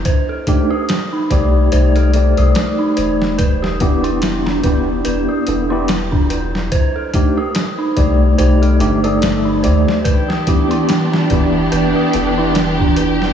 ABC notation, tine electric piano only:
X:1
M:4/4
L:1/16
Q:"Swing 16ths" 1/4=72
K:Em
V:1 name="Tine electric piano"
z2 [A,D_EG] z3 [A,EGd]2 [A,EGd]2 [A,EGd]6 | z2 [B,DEG]4 [B,DEG]4 [B,DEA] [B,DEG] z4 | z2 [A,D_EG] z3 [A,EGd]2 [A,EGd]2 [A,DEG] [A,EAd]3 [A,EGd]2 | z2 [B,DEG]4 [B,DEG]4 [B,DEA] [B,DEG] z4 |]